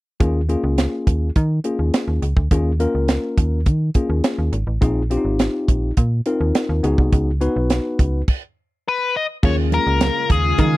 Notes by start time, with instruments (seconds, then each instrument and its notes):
0.20 fm bass D#2, tine electric piano A#3 C#4 F4 G#4, kick, closed hi-hat
0.49 tine electric piano A#3 C#4 F4 G#4, closed hi-hat
0.64 fm bass C#2
0.78 snare, closed hi-hat
1.07 fm bass D#2, kick, closed hi-hat
1.36 fm bass D#3, kick, closed hi-hat
1.64 tine electric piano A#3 C#4 F4 G#4, closed hi-hat
1.79 fm bass D#2
1.94 snare, closed hi-hat
2.08 fm bass D#2
2.22 fm bass C#2, closed hi-hat
2.36 fm bass D2, kick
2.51 fm bass D#2, tine electric piano A#3 C#4 F4 G#4, kick, closed hi-hat
2.80 tine electric piano A#3 C#4 F4 A#4, closed hi-hat
2.95 fm bass C#2
3.08 snare, closed hi-hat
3.38 fm bass D#2, kick, closed hi-hat
3.66 fm bass D#3, kick, closed hi-hat
3.94 tine electric piano A#3 C#4 F4 G#4, kick, closed hi-hat
4.10 fm bass D#2
4.24 snare, closed hi-hat
4.38 fm bass D#2
4.52 fm bass G#1, closed hi-hat
4.67 fm bass A1
4.81 fm bass A#1, tine electric piano C4 D#4 F4 G#4, kick, closed hi-hat
5.10 tine electric piano C4 D4 F4 G4, closed hi-hat
5.17 tine electric piano D#4
5.25 fm bass G#1
5.39 snare, closed hi-hat
5.68 fm bass A#1, kick, closed hi-hat
5.97 fm bass A#2, kick, closed hi-hat
6.26 tine electric piano C4 D#4 F4 A#4, closed hi-hat
6.41 fm bass D#2
6.55 snare, closed hi-hat
6.69 fm bass D#2
6.83 fm bass C#2, tine electric piano B3 D#4 F#4 G#4, closed hi-hat
6.98 fm bass C2, kick
7.12 fm bass C#2, kick, closed hi-hat
7.41 tine electric piano B3 D#4 F#4 B4, closed hi-hat
7.56 fm bass B1
7.70 snare, closed hi-hat
7.99 fm bass C#2, kick, closed hi-hat
8.28 kick, crash
8.88 lead electric guitar B4
9.17 lead electric guitar D#5
9.43 fm bass D#2, string machine C#3 G#3 F4, tine electric piano A#3 C#4 F4 G#4, lead electric guitar C#5, kick, crash, muted conga
9.72 lead electric guitar A#4, closed hi-hat, muted conga
9.87 fm bass C#2
10.01 snare, closed hi-hat, high conga
10.30 fm bass D#2, lead electric guitar G#4, kick, closed hi-hat
10.58 fm bass D#3, lead electric guitar G#4, kick, closed hi-hat, muted conga